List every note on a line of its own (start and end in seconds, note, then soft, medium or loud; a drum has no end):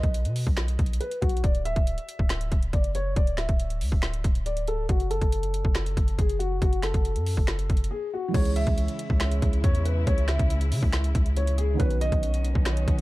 0.00 0.27 B1 loud
0.00 0.97 D#5 medium
0.00 kick loud
0.00 closed hi-hat medium
0.14 closed hi-hat medium
0.25 0.46 B2 loud
0.25 closed hi-hat medium
0.36 open hi-hat medium
0.47 0.78 B1 loud
0.47 kick medium
0.57 finger snap medium
0.57 snare loud
0.57 closed hi-hat medium
0.68 closed hi-hat medium
0.79 1.00 B1 loud
0.79 kick loud
0.79 closed hi-hat medium
0.86 closed hi-hat medium
0.93 closed hi-hat medium
1.00 1.17 B4 medium
1.00 closed hi-hat medium
1.11 closed hi-hat medium
1.22 1.43 B1 loud
1.22 1.38 F#4 medium
1.22 kick medium
1.22 closed hi-hat medium
1.29 closed hi-hat medium
1.37 closed hi-hat medium
1.43 1.75 D1 loud
1.43 1.60 D5 medium
1.43 kick loud
1.43 closed hi-hat medium
1.55 closed hi-hat medium
1.65 2.69 E5 medium
1.65 closed hi-hat medium
1.76 1.97 D1 loud
1.76 kick loud
1.76 closed hi-hat medium
1.87 closed hi-hat medium
1.98 closed hi-hat medium
2.09 closed hi-hat medium
2.19 2.50 D1 loud
2.19 kick medium
2.29 finger snap medium
2.29 snare loud
2.29 closed hi-hat medium
2.41 closed hi-hat medium
2.52 2.72 D1 loud
2.52 kick loud
2.52 closed hi-hat medium
2.63 closed hi-hat medium
2.73 3.15 F#1 loud
2.73 2.89 D5 medium
2.73 kick loud
2.73 closed hi-hat medium
2.84 closed hi-hat medium
2.95 3.11 C#5 medium
2.95 closed hi-hat medium
3.16 3.47 D1 loud
3.16 3.32 D5 medium
3.16 kick loud
3.16 closed hi-hat medium
3.27 closed hi-hat medium
3.37 4.42 E5 medium
3.37 finger snap medium
3.37 snare medium
3.37 closed hi-hat medium
3.49 3.83 D1 loud
3.49 kick loud
3.49 closed hi-hat medium
3.60 closed hi-hat medium
3.70 closed hi-hat medium
3.81 3.91 D2 loud
3.81 open hi-hat medium
3.92 4.23 D1 loud
3.92 kick medium
4.02 finger snap medium
4.02 snare loud
4.02 closed hi-hat medium
4.14 closed hi-hat medium
4.24 4.86 D1 loud
4.24 kick loud
4.24 closed hi-hat medium
4.35 closed hi-hat medium
4.46 4.62 D5 medium
4.46 closed hi-hat medium
4.57 closed hi-hat medium
4.68 4.84 A4 medium
4.68 closed hi-hat medium
4.89 5.20 F#1 loud
4.89 5.05 F#4 medium
4.89 kick loud
4.89 closed hi-hat medium
5.00 closed hi-hat medium
5.11 6.15 A4 medium
5.11 closed hi-hat medium
5.21 5.63 F#1 loud
5.21 kick loud
5.21 closed hi-hat medium
5.32 closed hi-hat medium
5.43 closed hi-hat medium
5.54 closed hi-hat medium
5.65 5.96 F#1 loud
5.65 kick medium
5.75 finger snap medium
5.75 snare loud
5.75 closed hi-hat medium
5.86 closed hi-hat medium
5.97 6.18 F#1 loud
5.97 kick loud
5.97 closed hi-hat medium
6.08 closed hi-hat medium
6.18 6.60 F#1 loud
6.18 6.35 G#4 medium
6.18 kick loud
6.18 closed hi-hat medium
6.29 closed hi-hat medium
6.39 6.56 F#4 medium
6.39 closed hi-hat medium
6.62 6.93 F#1 loud
6.62 6.78 F#4 medium
6.62 kick loud
6.62 closed hi-hat medium
6.73 closed hi-hat medium
6.83 7.87 A4 medium
6.83 finger snap medium
6.83 snare medium
6.83 closed hi-hat medium
6.94 7.17 F#1 loud
6.94 kick loud
6.94 closed hi-hat medium
7.05 closed hi-hat medium
7.16 7.36 F#2 loud
7.16 closed hi-hat medium
7.26 open hi-hat medium
7.37 7.68 F#1 loud
7.37 kick medium
7.47 finger snap medium
7.47 snare loud
7.47 closed hi-hat medium
7.59 closed hi-hat medium
7.70 7.90 F#1 loud
7.70 kick loud
7.70 closed hi-hat medium
7.77 closed hi-hat medium
7.84 closed hi-hat medium
7.91 8.07 G#4 medium
8.14 8.29 F#4 medium
8.28 11.73 E3 medium
8.28 11.74 G#3 medium
8.34 8.65 C#2 loud
8.34 11.76 C#3 medium
8.34 11.76 G#3 medium
8.34 11.76 C#4 medium
8.34 11.76 E4 medium
8.34 11.77 G#4 medium
8.34 8.50 C#5 medium
8.34 kick loud
8.34 closed hi-hat medium
8.34 crash loud
8.40 11.79 C#5 medium
8.45 closed hi-hat medium
8.56 9.60 E5 medium
8.56 closed hi-hat medium
8.67 8.88 C#2 loud
8.67 kick loud
8.67 closed hi-hat medium
8.78 closed hi-hat medium
8.88 closed hi-hat medium
8.99 closed hi-hat medium
9.10 9.41 C#2 loud
9.10 kick medium
9.20 finger snap loud
9.20 snare loud
9.20 closed hi-hat medium
9.31 closed hi-hat medium
9.42 9.63 C#2 loud
9.42 kick loud
9.42 closed hi-hat medium
9.53 closed hi-hat medium
9.64 10.05 E2 loud
9.64 9.80 C#5 medium
9.64 kick loud
9.64 closed hi-hat medium
9.75 closed hi-hat medium
9.85 10.02 B4 medium
9.85 closed hi-hat medium
10.07 10.38 C#2 loud
10.07 10.23 C#5 medium
10.07 kick loud
10.07 closed hi-hat medium
10.18 closed hi-hat medium
10.28 11.33 E5 medium
10.28 finger snap medium
10.28 snare loud
10.28 closed hi-hat medium
10.39 10.73 C#2 loud
10.39 kick loud
10.39 closed hi-hat medium
10.50 closed hi-hat medium
10.61 closed hi-hat medium
10.72 10.82 C#3 loud
10.72 open hi-hat medium
10.83 11.14 C#2 loud
10.83 kick medium
10.93 finger snap medium
10.93 snare loud
10.93 closed hi-hat medium
11.04 closed hi-hat medium
11.15 11.77 C#2 loud
11.15 kick loud
11.15 closed hi-hat medium
11.26 closed hi-hat medium
11.37 11.53 C#5 medium
11.37 closed hi-hat medium
11.47 closed hi-hat medium
11.58 11.74 G#4 medium
11.58 closed hi-hat medium
11.74 13.01 D#3 medium
11.74 13.01 B3 medium
11.79 12.11 B1 loud
11.79 13.01 D#3 medium
11.79 13.01 B3 medium
11.79 13.01 C#4 medium
11.79 13.01 F#4 medium
11.79 11.96 B4 medium
11.79 kick loud
11.79 closed hi-hat medium
11.86 13.01 C#5 medium
11.90 closed hi-hat medium
12.01 13.01 D#5 loud
12.01 closed hi-hat medium
12.12 12.54 B1 loud
12.12 kick loud
12.12 closed hi-hat medium
12.23 closed hi-hat medium
12.34 closed hi-hat medium
12.45 closed hi-hat medium
12.55 12.86 B1 loud
12.55 kick medium
12.65 finger snap loud
12.65 snare loud
12.65 closed hi-hat medium
12.77 closed hi-hat medium
12.88 13.01 B1 loud
12.88 kick loud
12.88 closed hi-hat medium